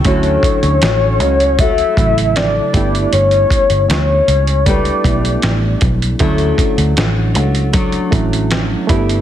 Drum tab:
HH |xxxxx-xxxxxxx-xx|xxxxx-xxxxxxx-xx|xxxxx-xxxxxxx-xx|
SD |----o-------o---|----o-------o---|----o-------o---|
BD |o-o-----o-o---o-|--o-----o-o---o-|o-o-----o-o---o-|